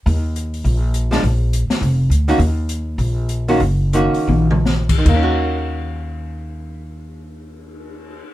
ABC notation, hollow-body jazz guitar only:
X:1
M:4/4
L:1/8
Q:"Swing" 1/4=186
K:Ebm
V:1 name="Hollow-body jazz guitar"
z6 z [F,A,=D] | z6 z [E,B,DG] | z6 z [E,B,DG] | z2 [E,B,DG]3 z3 |
[E,B,DG]8- | [E,B,DG]8 |]